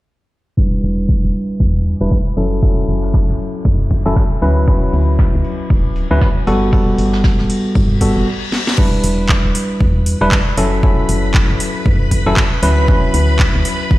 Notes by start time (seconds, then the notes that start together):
0.57 G3 D4 E4 B4, kick, ride
0.83 E1, open hi-hat, ride
1.09 kick, snare, ride
1.24 E1
1.34 open hi-hat, ride
1.60 E2, kick, ride
1.86 open hi-hat, ride
2.01 E1 G3 D4 E4 B4
2.11 kick, snare
2.37 F#1 F#3 C#4 E4 A4, open hi-hat, ride
2.62 F#3 C#4 E4 A4, kick, ride
2.88 F#1, open hi-hat, ride
3.03 snare
3.14 kick, snare, ride
3.29 F#1, snare
3.39 open hi-hat, ride
3.65 F#2, kick, ride
3.91 kick, open hi-hat, ride
4.06 F#1 F#3 C#4 E4 A4
4.16 kick, snare, open hi-hat
4.41 D2 F#3 C#4 E4 B4, open hi-hat, ride
4.67 F#3 C#4 E4 B4, kick, ride
4.93 D2, open hi-hat, ride
5.19 kick, snare, ride
5.34 D2
5.44 open hi-hat, ride
5.70 D1, kick, ride
5.96 open hi-hat, ride
6.11 D2 F#3 C#4 E4 B4
6.21 kick, snare, ride
6.47 G1 G3 B3 F#4 A4, open hi-hat, ride
6.72 G3 B3 F#4 A4, kick, ride
6.98 G1, open hi-hat, ride
7.13 snare
7.24 kick, snare, ride
7.39 G1, snare
7.50 open hi-hat, ride
7.75 G2, kick, ride, reverse cymbal
8.01 G3 B3 F#4 A4, kick, open hi-hat, ride
8.16 G1
8.52 snare
8.67 snare
8.78 G3 D4 E4 B4 B5, kick, crash
9.04 E1, open hi-hat
9.29 kick, clap
9.44 E1
9.55 open hi-hat
9.81 E2, kick
10.06 open hi-hat
10.21 E1 G3 D4 E4 B4
10.32 kick, clap
10.57 F#1 F#3 C#4 E4 A4, open hi-hat
10.83 F#3 C#4 E4 A4, kick
11.09 F#1, open hi-hat
11.34 kick, clap
11.49 F#1
11.60 open hi-hat
11.86 F#2, kick
12.11 kick, open hi-hat
12.26 F#1 F#3 C#4 E4 A4
12.37 kick, clap
12.63 D2 F#3 C#4 E4 B4, open hi-hat
12.88 F#3 C#4 E4 B4, kick
13.14 D2, open hi-hat
13.39 kick, clap
13.55 D2
13.65 open hi-hat
13.91 D1, kick